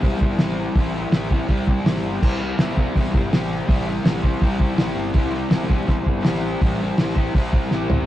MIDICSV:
0, 0, Header, 1, 4, 480
1, 0, Start_track
1, 0, Tempo, 365854
1, 996, Time_signature, 4, 2, 24, 8
1, 10576, End_track
2, 0, Start_track
2, 0, Title_t, "Overdriven electric guitar"
2, 0, Program_c, 0, 29
2, 4, Note_on_c, 0, 48, 94
2, 20, Note_on_c, 0, 55, 90
2, 27, Note_on_c, 0, 60, 97
2, 49, Note_on_c, 0, 64, 91
2, 59, Note_on_c, 0, 72, 92
2, 63, Note_on_c, 0, 67, 88
2, 271, Note_off_c, 0, 72, 0
2, 276, Note_on_c, 0, 72, 64
2, 289, Note_off_c, 0, 67, 0
2, 294, Note_on_c, 0, 67, 66
2, 302, Note_off_c, 0, 64, 0
2, 307, Note_on_c, 0, 64, 59
2, 330, Note_off_c, 0, 60, 0
2, 335, Note_on_c, 0, 60, 55
2, 524, Note_off_c, 0, 60, 0
2, 529, Note_on_c, 0, 60, 75
2, 546, Note_off_c, 0, 64, 0
2, 551, Note_on_c, 0, 64, 74
2, 564, Note_off_c, 0, 67, 0
2, 569, Note_on_c, 0, 67, 82
2, 573, Note_off_c, 0, 72, 0
2, 578, Note_on_c, 0, 72, 88
2, 978, Note_off_c, 0, 48, 0
2, 983, Note_on_c, 0, 48, 89
2, 1004, Note_off_c, 0, 55, 0
2, 1009, Note_on_c, 0, 55, 99
2, 1013, Note_off_c, 0, 60, 0
2, 1018, Note_on_c, 0, 60, 92
2, 1023, Note_off_c, 0, 64, 0
2, 1029, Note_on_c, 0, 64, 87
2, 1032, Note_off_c, 0, 67, 0
2, 1037, Note_on_c, 0, 67, 89
2, 1049, Note_off_c, 0, 72, 0
2, 1054, Note_on_c, 0, 72, 101
2, 1219, Note_off_c, 0, 72, 0
2, 1224, Note_on_c, 0, 72, 72
2, 1242, Note_off_c, 0, 67, 0
2, 1247, Note_on_c, 0, 67, 64
2, 1260, Note_off_c, 0, 64, 0
2, 1265, Note_on_c, 0, 64, 66
2, 1275, Note_off_c, 0, 60, 0
2, 1280, Note_on_c, 0, 60, 58
2, 1464, Note_off_c, 0, 60, 0
2, 1470, Note_on_c, 0, 60, 82
2, 1481, Note_off_c, 0, 64, 0
2, 1486, Note_on_c, 0, 64, 80
2, 1505, Note_off_c, 0, 67, 0
2, 1510, Note_on_c, 0, 67, 90
2, 1516, Note_off_c, 0, 72, 0
2, 1521, Note_on_c, 0, 72, 89
2, 1685, Note_off_c, 0, 72, 0
2, 1691, Note_on_c, 0, 72, 74
2, 1715, Note_off_c, 0, 67, 0
2, 1720, Note_on_c, 0, 67, 66
2, 1733, Note_off_c, 0, 64, 0
2, 1738, Note_on_c, 0, 64, 70
2, 1748, Note_off_c, 0, 60, 0
2, 1753, Note_on_c, 0, 60, 64
2, 1925, Note_off_c, 0, 48, 0
2, 1931, Note_on_c, 0, 48, 93
2, 1941, Note_off_c, 0, 55, 0
2, 1946, Note_on_c, 0, 55, 93
2, 1954, Note_off_c, 0, 60, 0
2, 1959, Note_on_c, 0, 60, 96
2, 1966, Note_off_c, 0, 64, 0
2, 1972, Note_on_c, 0, 64, 100
2, 1978, Note_off_c, 0, 67, 0
2, 1983, Note_off_c, 0, 72, 0
2, 1984, Note_on_c, 0, 67, 92
2, 1989, Note_on_c, 0, 72, 94
2, 2187, Note_off_c, 0, 72, 0
2, 2192, Note_on_c, 0, 72, 69
2, 2209, Note_off_c, 0, 67, 0
2, 2214, Note_on_c, 0, 67, 63
2, 2239, Note_off_c, 0, 64, 0
2, 2244, Note_on_c, 0, 64, 59
2, 2252, Note_off_c, 0, 60, 0
2, 2257, Note_on_c, 0, 60, 48
2, 2424, Note_off_c, 0, 60, 0
2, 2429, Note_on_c, 0, 60, 75
2, 2436, Note_off_c, 0, 64, 0
2, 2441, Note_on_c, 0, 64, 77
2, 2459, Note_off_c, 0, 67, 0
2, 2464, Note_on_c, 0, 67, 79
2, 2479, Note_off_c, 0, 72, 0
2, 2484, Note_on_c, 0, 72, 84
2, 2884, Note_off_c, 0, 48, 0
2, 2889, Note_on_c, 0, 48, 96
2, 2906, Note_off_c, 0, 60, 0
2, 2907, Note_off_c, 0, 55, 0
2, 2911, Note_on_c, 0, 60, 84
2, 2912, Note_on_c, 0, 55, 95
2, 2925, Note_off_c, 0, 64, 0
2, 2930, Note_on_c, 0, 64, 96
2, 2935, Note_off_c, 0, 67, 0
2, 2940, Note_on_c, 0, 67, 91
2, 2946, Note_off_c, 0, 72, 0
2, 2951, Note_on_c, 0, 72, 92
2, 3140, Note_off_c, 0, 72, 0
2, 3146, Note_on_c, 0, 72, 71
2, 3164, Note_off_c, 0, 67, 0
2, 3169, Note_on_c, 0, 67, 63
2, 3188, Note_off_c, 0, 64, 0
2, 3193, Note_on_c, 0, 64, 55
2, 3197, Note_off_c, 0, 60, 0
2, 3202, Note_on_c, 0, 60, 64
2, 3369, Note_off_c, 0, 60, 0
2, 3374, Note_on_c, 0, 60, 75
2, 3380, Note_off_c, 0, 64, 0
2, 3385, Note_on_c, 0, 64, 92
2, 3412, Note_off_c, 0, 67, 0
2, 3417, Note_on_c, 0, 67, 85
2, 3422, Note_off_c, 0, 72, 0
2, 3427, Note_on_c, 0, 72, 88
2, 3622, Note_off_c, 0, 72, 0
2, 3627, Note_on_c, 0, 72, 73
2, 3655, Note_off_c, 0, 67, 0
2, 3660, Note_on_c, 0, 67, 71
2, 3674, Note_off_c, 0, 64, 0
2, 3679, Note_on_c, 0, 64, 62
2, 3698, Note_off_c, 0, 60, 0
2, 3703, Note_on_c, 0, 60, 64
2, 3877, Note_off_c, 0, 48, 0
2, 3882, Note_on_c, 0, 48, 99
2, 3897, Note_off_c, 0, 55, 0
2, 3902, Note_on_c, 0, 55, 89
2, 3906, Note_off_c, 0, 60, 0
2, 3911, Note_off_c, 0, 64, 0
2, 3912, Note_on_c, 0, 60, 86
2, 3917, Note_on_c, 0, 64, 88
2, 3933, Note_off_c, 0, 67, 0
2, 3938, Note_on_c, 0, 67, 99
2, 3943, Note_off_c, 0, 72, 0
2, 3948, Note_on_c, 0, 72, 91
2, 4087, Note_off_c, 0, 72, 0
2, 4093, Note_on_c, 0, 72, 61
2, 4121, Note_off_c, 0, 67, 0
2, 4126, Note_on_c, 0, 67, 63
2, 4141, Note_off_c, 0, 64, 0
2, 4146, Note_on_c, 0, 64, 57
2, 4164, Note_off_c, 0, 60, 0
2, 4170, Note_on_c, 0, 60, 58
2, 4328, Note_off_c, 0, 60, 0
2, 4333, Note_on_c, 0, 60, 83
2, 4363, Note_off_c, 0, 64, 0
2, 4369, Note_on_c, 0, 64, 76
2, 4379, Note_off_c, 0, 67, 0
2, 4384, Note_on_c, 0, 67, 91
2, 4386, Note_off_c, 0, 72, 0
2, 4391, Note_on_c, 0, 72, 83
2, 4806, Note_off_c, 0, 48, 0
2, 4811, Note_on_c, 0, 48, 91
2, 4824, Note_off_c, 0, 55, 0
2, 4829, Note_on_c, 0, 55, 98
2, 4833, Note_off_c, 0, 60, 0
2, 4839, Note_on_c, 0, 60, 88
2, 4841, Note_off_c, 0, 64, 0
2, 4847, Note_off_c, 0, 67, 0
2, 4847, Note_on_c, 0, 64, 93
2, 4853, Note_on_c, 0, 67, 100
2, 4870, Note_off_c, 0, 72, 0
2, 4875, Note_on_c, 0, 72, 98
2, 5070, Note_off_c, 0, 72, 0
2, 5076, Note_on_c, 0, 72, 67
2, 5098, Note_off_c, 0, 67, 0
2, 5103, Note_on_c, 0, 67, 59
2, 5108, Note_off_c, 0, 64, 0
2, 5113, Note_on_c, 0, 64, 65
2, 5124, Note_off_c, 0, 60, 0
2, 5130, Note_on_c, 0, 60, 61
2, 5291, Note_off_c, 0, 60, 0
2, 5296, Note_on_c, 0, 60, 76
2, 5315, Note_off_c, 0, 64, 0
2, 5320, Note_on_c, 0, 64, 78
2, 5340, Note_off_c, 0, 67, 0
2, 5345, Note_on_c, 0, 67, 80
2, 5351, Note_off_c, 0, 72, 0
2, 5356, Note_on_c, 0, 72, 85
2, 5533, Note_off_c, 0, 72, 0
2, 5539, Note_on_c, 0, 72, 76
2, 5561, Note_off_c, 0, 67, 0
2, 5566, Note_on_c, 0, 67, 63
2, 5586, Note_off_c, 0, 64, 0
2, 5591, Note_on_c, 0, 64, 66
2, 5596, Note_off_c, 0, 60, 0
2, 5601, Note_on_c, 0, 60, 59
2, 5770, Note_off_c, 0, 48, 0
2, 5775, Note_on_c, 0, 48, 83
2, 5792, Note_off_c, 0, 55, 0
2, 5797, Note_on_c, 0, 55, 91
2, 5802, Note_off_c, 0, 60, 0
2, 5807, Note_on_c, 0, 60, 86
2, 5816, Note_off_c, 0, 64, 0
2, 5821, Note_on_c, 0, 64, 97
2, 5830, Note_off_c, 0, 72, 0
2, 5834, Note_off_c, 0, 67, 0
2, 5836, Note_on_c, 0, 72, 100
2, 5839, Note_on_c, 0, 67, 99
2, 6013, Note_off_c, 0, 72, 0
2, 6018, Note_on_c, 0, 72, 69
2, 6043, Note_off_c, 0, 67, 0
2, 6048, Note_on_c, 0, 67, 68
2, 6057, Note_off_c, 0, 64, 0
2, 6062, Note_on_c, 0, 64, 58
2, 6078, Note_off_c, 0, 60, 0
2, 6083, Note_on_c, 0, 60, 54
2, 6245, Note_off_c, 0, 60, 0
2, 6250, Note_on_c, 0, 60, 77
2, 6269, Note_off_c, 0, 64, 0
2, 6274, Note_on_c, 0, 64, 76
2, 6292, Note_off_c, 0, 67, 0
2, 6298, Note_on_c, 0, 67, 79
2, 6315, Note_off_c, 0, 72, 0
2, 6320, Note_on_c, 0, 72, 85
2, 6737, Note_off_c, 0, 48, 0
2, 6739, Note_off_c, 0, 55, 0
2, 6742, Note_on_c, 0, 48, 96
2, 6744, Note_on_c, 0, 55, 96
2, 6765, Note_off_c, 0, 60, 0
2, 6770, Note_on_c, 0, 60, 103
2, 6771, Note_off_c, 0, 64, 0
2, 6776, Note_on_c, 0, 64, 108
2, 6777, Note_off_c, 0, 67, 0
2, 6782, Note_on_c, 0, 67, 101
2, 6791, Note_off_c, 0, 72, 0
2, 6796, Note_on_c, 0, 72, 101
2, 6962, Note_off_c, 0, 72, 0
2, 6967, Note_on_c, 0, 72, 70
2, 7000, Note_off_c, 0, 67, 0
2, 7005, Note_on_c, 0, 67, 63
2, 7010, Note_off_c, 0, 64, 0
2, 7015, Note_on_c, 0, 64, 64
2, 7026, Note_off_c, 0, 60, 0
2, 7031, Note_on_c, 0, 60, 60
2, 7210, Note_off_c, 0, 60, 0
2, 7215, Note_on_c, 0, 60, 83
2, 7238, Note_off_c, 0, 64, 0
2, 7243, Note_on_c, 0, 64, 82
2, 7257, Note_off_c, 0, 67, 0
2, 7262, Note_on_c, 0, 67, 84
2, 7281, Note_off_c, 0, 72, 0
2, 7286, Note_on_c, 0, 72, 86
2, 7451, Note_off_c, 0, 72, 0
2, 7456, Note_on_c, 0, 72, 71
2, 7476, Note_off_c, 0, 67, 0
2, 7481, Note_on_c, 0, 67, 71
2, 7503, Note_off_c, 0, 64, 0
2, 7504, Note_off_c, 0, 60, 0
2, 7508, Note_on_c, 0, 64, 66
2, 7510, Note_on_c, 0, 60, 64
2, 7681, Note_off_c, 0, 48, 0
2, 7686, Note_on_c, 0, 48, 98
2, 7692, Note_off_c, 0, 55, 0
2, 7697, Note_on_c, 0, 55, 90
2, 7702, Note_off_c, 0, 60, 0
2, 7718, Note_on_c, 0, 60, 96
2, 7720, Note_off_c, 0, 64, 0
2, 7731, Note_off_c, 0, 72, 0
2, 7733, Note_off_c, 0, 67, 0
2, 7736, Note_on_c, 0, 64, 103
2, 7747, Note_on_c, 0, 72, 99
2, 7749, Note_on_c, 0, 67, 98
2, 7912, Note_off_c, 0, 72, 0
2, 7927, Note_on_c, 0, 72, 70
2, 7933, Note_off_c, 0, 67, 0
2, 7949, Note_on_c, 0, 67, 62
2, 7960, Note_off_c, 0, 64, 0
2, 7972, Note_off_c, 0, 60, 0
2, 7976, Note_on_c, 0, 64, 64
2, 7988, Note_on_c, 0, 60, 55
2, 8154, Note_off_c, 0, 60, 0
2, 8170, Note_on_c, 0, 60, 86
2, 8175, Note_off_c, 0, 64, 0
2, 8182, Note_off_c, 0, 48, 0
2, 8188, Note_off_c, 0, 55, 0
2, 8190, Note_off_c, 0, 67, 0
2, 8191, Note_on_c, 0, 64, 76
2, 8206, Note_on_c, 0, 67, 82
2, 8221, Note_off_c, 0, 72, 0
2, 8236, Note_on_c, 0, 72, 85
2, 8671, Note_on_c, 0, 48, 92
2, 8673, Note_off_c, 0, 60, 0
2, 8681, Note_on_c, 0, 55, 87
2, 8688, Note_on_c, 0, 60, 95
2, 8689, Note_off_c, 0, 64, 0
2, 8705, Note_on_c, 0, 64, 94
2, 8706, Note_off_c, 0, 67, 0
2, 8722, Note_off_c, 0, 72, 0
2, 8722, Note_on_c, 0, 67, 110
2, 8738, Note_on_c, 0, 72, 96
2, 8890, Note_off_c, 0, 72, 0
2, 8905, Note_on_c, 0, 72, 76
2, 8915, Note_off_c, 0, 67, 0
2, 8931, Note_on_c, 0, 67, 64
2, 8934, Note_off_c, 0, 64, 0
2, 8945, Note_off_c, 0, 60, 0
2, 8950, Note_on_c, 0, 64, 65
2, 8961, Note_on_c, 0, 60, 60
2, 9146, Note_off_c, 0, 60, 0
2, 9155, Note_off_c, 0, 48, 0
2, 9160, Note_off_c, 0, 55, 0
2, 9161, Note_on_c, 0, 60, 75
2, 9172, Note_off_c, 0, 64, 0
2, 9188, Note_on_c, 0, 64, 82
2, 9193, Note_off_c, 0, 67, 0
2, 9209, Note_on_c, 0, 67, 88
2, 9218, Note_off_c, 0, 72, 0
2, 9234, Note_on_c, 0, 72, 92
2, 9364, Note_off_c, 0, 72, 0
2, 9380, Note_on_c, 0, 72, 75
2, 9394, Note_off_c, 0, 67, 0
2, 9410, Note_on_c, 0, 67, 69
2, 9416, Note_off_c, 0, 64, 0
2, 9422, Note_off_c, 0, 60, 0
2, 9432, Note_on_c, 0, 64, 67
2, 9438, Note_on_c, 0, 60, 60
2, 9638, Note_on_c, 0, 48, 86
2, 9648, Note_off_c, 0, 60, 0
2, 9650, Note_on_c, 0, 55, 100
2, 9660, Note_off_c, 0, 64, 0
2, 9664, Note_on_c, 0, 60, 102
2, 9665, Note_off_c, 0, 67, 0
2, 9676, Note_on_c, 0, 64, 100
2, 9681, Note_on_c, 0, 67, 105
2, 9687, Note_off_c, 0, 72, 0
2, 9703, Note_on_c, 0, 72, 114
2, 9877, Note_off_c, 0, 72, 0
2, 9889, Note_off_c, 0, 67, 0
2, 9893, Note_on_c, 0, 72, 68
2, 9905, Note_on_c, 0, 67, 66
2, 9916, Note_off_c, 0, 64, 0
2, 9931, Note_on_c, 0, 64, 61
2, 9933, Note_off_c, 0, 60, 0
2, 9949, Note_on_c, 0, 60, 54
2, 10093, Note_off_c, 0, 60, 0
2, 10109, Note_on_c, 0, 60, 83
2, 10115, Note_off_c, 0, 64, 0
2, 10119, Note_off_c, 0, 48, 0
2, 10125, Note_off_c, 0, 55, 0
2, 10131, Note_on_c, 0, 64, 77
2, 10137, Note_off_c, 0, 67, 0
2, 10149, Note_off_c, 0, 72, 0
2, 10152, Note_on_c, 0, 67, 90
2, 10165, Note_on_c, 0, 72, 85
2, 10576, Note_off_c, 0, 60, 0
2, 10576, Note_off_c, 0, 64, 0
2, 10576, Note_off_c, 0, 67, 0
2, 10576, Note_off_c, 0, 72, 0
2, 10576, End_track
3, 0, Start_track
3, 0, Title_t, "Fingered electric bass"
3, 0, Program_c, 1, 33
3, 45, Note_on_c, 1, 28, 101
3, 230, Note_off_c, 1, 28, 0
3, 269, Note_on_c, 1, 31, 87
3, 461, Note_off_c, 1, 31, 0
3, 476, Note_on_c, 1, 33, 81
3, 869, Note_off_c, 1, 33, 0
3, 987, Note_on_c, 1, 33, 100
3, 1367, Note_off_c, 1, 33, 0
3, 1449, Note_on_c, 1, 33, 84
3, 1836, Note_off_c, 1, 33, 0
3, 1961, Note_on_c, 1, 36, 91
3, 2336, Note_off_c, 1, 36, 0
3, 2416, Note_on_c, 1, 33, 86
3, 2612, Note_off_c, 1, 33, 0
3, 2655, Note_on_c, 1, 31, 81
3, 2851, Note_off_c, 1, 31, 0
3, 2918, Note_on_c, 1, 36, 103
3, 3294, Note_off_c, 1, 36, 0
3, 3391, Note_on_c, 1, 28, 95
3, 3770, Note_off_c, 1, 28, 0
3, 3870, Note_on_c, 1, 28, 88
3, 4061, Note_off_c, 1, 28, 0
3, 4122, Note_on_c, 1, 31, 88
3, 4308, Note_off_c, 1, 31, 0
3, 4341, Note_on_c, 1, 33, 86
3, 4724, Note_off_c, 1, 33, 0
3, 4834, Note_on_c, 1, 33, 93
3, 5212, Note_off_c, 1, 33, 0
3, 5305, Note_on_c, 1, 33, 90
3, 5687, Note_off_c, 1, 33, 0
3, 5795, Note_on_c, 1, 36, 98
3, 6173, Note_off_c, 1, 36, 0
3, 6268, Note_on_c, 1, 33, 94
3, 6460, Note_off_c, 1, 33, 0
3, 6493, Note_on_c, 1, 31, 94
3, 6691, Note_off_c, 1, 31, 0
3, 6739, Note_on_c, 1, 36, 103
3, 7123, Note_off_c, 1, 36, 0
3, 7217, Note_on_c, 1, 28, 85
3, 7602, Note_off_c, 1, 28, 0
3, 7707, Note_on_c, 1, 28, 92
3, 7900, Note_off_c, 1, 28, 0
3, 7954, Note_on_c, 1, 31, 95
3, 8144, Note_off_c, 1, 31, 0
3, 8199, Note_on_c, 1, 33, 92
3, 8576, Note_off_c, 1, 33, 0
3, 8682, Note_on_c, 1, 33, 96
3, 9058, Note_off_c, 1, 33, 0
3, 9165, Note_on_c, 1, 33, 85
3, 9540, Note_off_c, 1, 33, 0
3, 9637, Note_on_c, 1, 36, 96
3, 10015, Note_off_c, 1, 36, 0
3, 10140, Note_on_c, 1, 33, 94
3, 10320, Note_off_c, 1, 33, 0
3, 10339, Note_on_c, 1, 31, 90
3, 10536, Note_off_c, 1, 31, 0
3, 10576, End_track
4, 0, Start_track
4, 0, Title_t, "Drums"
4, 38, Note_on_c, 9, 36, 94
4, 45, Note_on_c, 9, 46, 63
4, 169, Note_off_c, 9, 36, 0
4, 176, Note_off_c, 9, 46, 0
4, 276, Note_on_c, 9, 36, 84
4, 408, Note_off_c, 9, 36, 0
4, 506, Note_on_c, 9, 46, 58
4, 509, Note_on_c, 9, 38, 113
4, 636, Note_off_c, 9, 38, 0
4, 636, Note_on_c, 9, 38, 34
4, 638, Note_off_c, 9, 46, 0
4, 768, Note_off_c, 9, 38, 0
4, 991, Note_on_c, 9, 36, 121
4, 994, Note_on_c, 9, 46, 62
4, 1122, Note_off_c, 9, 36, 0
4, 1125, Note_off_c, 9, 46, 0
4, 1471, Note_on_c, 9, 46, 71
4, 1474, Note_on_c, 9, 38, 122
4, 1602, Note_off_c, 9, 46, 0
4, 1605, Note_off_c, 9, 38, 0
4, 1715, Note_on_c, 9, 36, 86
4, 1847, Note_off_c, 9, 36, 0
4, 1949, Note_on_c, 9, 46, 70
4, 1952, Note_on_c, 9, 36, 91
4, 2080, Note_off_c, 9, 46, 0
4, 2083, Note_off_c, 9, 36, 0
4, 2197, Note_on_c, 9, 36, 89
4, 2328, Note_off_c, 9, 36, 0
4, 2440, Note_on_c, 9, 46, 64
4, 2443, Note_on_c, 9, 38, 113
4, 2571, Note_off_c, 9, 46, 0
4, 2573, Note_off_c, 9, 38, 0
4, 2573, Note_on_c, 9, 38, 35
4, 2705, Note_off_c, 9, 38, 0
4, 2918, Note_on_c, 9, 36, 109
4, 2923, Note_on_c, 9, 49, 101
4, 3049, Note_off_c, 9, 36, 0
4, 3054, Note_off_c, 9, 49, 0
4, 3394, Note_on_c, 9, 46, 56
4, 3397, Note_on_c, 9, 38, 119
4, 3525, Note_off_c, 9, 46, 0
4, 3528, Note_off_c, 9, 38, 0
4, 3638, Note_on_c, 9, 36, 81
4, 3770, Note_off_c, 9, 36, 0
4, 3881, Note_on_c, 9, 36, 90
4, 3888, Note_on_c, 9, 46, 61
4, 4012, Note_off_c, 9, 36, 0
4, 4019, Note_off_c, 9, 46, 0
4, 4119, Note_on_c, 9, 36, 92
4, 4251, Note_off_c, 9, 36, 0
4, 4366, Note_on_c, 9, 46, 59
4, 4369, Note_on_c, 9, 38, 119
4, 4498, Note_off_c, 9, 46, 0
4, 4500, Note_off_c, 9, 38, 0
4, 4839, Note_on_c, 9, 36, 110
4, 4853, Note_on_c, 9, 46, 62
4, 4971, Note_off_c, 9, 36, 0
4, 4985, Note_off_c, 9, 46, 0
4, 5320, Note_on_c, 9, 46, 68
4, 5322, Note_on_c, 9, 38, 122
4, 5451, Note_off_c, 9, 46, 0
4, 5454, Note_off_c, 9, 38, 0
4, 5557, Note_on_c, 9, 36, 81
4, 5689, Note_off_c, 9, 36, 0
4, 5795, Note_on_c, 9, 46, 71
4, 5796, Note_on_c, 9, 36, 89
4, 5927, Note_off_c, 9, 36, 0
4, 5927, Note_off_c, 9, 46, 0
4, 6033, Note_on_c, 9, 36, 90
4, 6165, Note_off_c, 9, 36, 0
4, 6271, Note_on_c, 9, 46, 65
4, 6274, Note_on_c, 9, 38, 113
4, 6394, Note_off_c, 9, 38, 0
4, 6394, Note_on_c, 9, 38, 35
4, 6402, Note_off_c, 9, 46, 0
4, 6525, Note_off_c, 9, 38, 0
4, 6746, Note_on_c, 9, 46, 59
4, 6751, Note_on_c, 9, 36, 114
4, 6877, Note_off_c, 9, 46, 0
4, 6882, Note_off_c, 9, 36, 0
4, 7226, Note_on_c, 9, 46, 62
4, 7228, Note_on_c, 9, 38, 116
4, 7357, Note_off_c, 9, 46, 0
4, 7360, Note_off_c, 9, 38, 0
4, 7474, Note_on_c, 9, 36, 86
4, 7605, Note_off_c, 9, 36, 0
4, 7717, Note_on_c, 9, 36, 91
4, 7720, Note_on_c, 9, 46, 62
4, 7848, Note_off_c, 9, 36, 0
4, 7851, Note_off_c, 9, 46, 0
4, 7955, Note_on_c, 9, 36, 85
4, 8087, Note_off_c, 9, 36, 0
4, 8192, Note_on_c, 9, 46, 63
4, 8195, Note_on_c, 9, 38, 108
4, 8323, Note_off_c, 9, 46, 0
4, 8325, Note_off_c, 9, 38, 0
4, 8325, Note_on_c, 9, 38, 37
4, 8456, Note_off_c, 9, 38, 0
4, 8679, Note_on_c, 9, 36, 118
4, 8679, Note_on_c, 9, 46, 62
4, 8810, Note_off_c, 9, 36, 0
4, 8810, Note_off_c, 9, 46, 0
4, 9156, Note_on_c, 9, 46, 64
4, 9158, Note_on_c, 9, 38, 122
4, 9287, Note_off_c, 9, 46, 0
4, 9289, Note_off_c, 9, 38, 0
4, 9398, Note_on_c, 9, 36, 83
4, 9530, Note_off_c, 9, 36, 0
4, 9640, Note_on_c, 9, 36, 93
4, 9651, Note_on_c, 9, 46, 69
4, 9771, Note_off_c, 9, 36, 0
4, 9782, Note_off_c, 9, 46, 0
4, 9878, Note_on_c, 9, 36, 91
4, 10009, Note_off_c, 9, 36, 0
4, 10116, Note_on_c, 9, 38, 69
4, 10247, Note_off_c, 9, 38, 0
4, 10361, Note_on_c, 9, 43, 92
4, 10492, Note_off_c, 9, 43, 0
4, 10576, End_track
0, 0, End_of_file